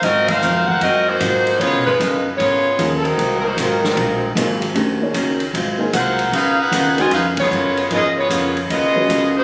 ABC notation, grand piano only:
X:1
M:4/4
L:1/8
Q:"Swing" 1/4=152
K:Abmix
V:1 name="Grand piano"
z8 | z6 [F,B,EA] z | z6 [B,EAc] z | [=A,=D=Gc] [B,E_A_d]2 z2 [B,EAc]3 |
z3 [E,A,DG] z4 | [F,EAB]3 z2 [G,A,D_c]3 |]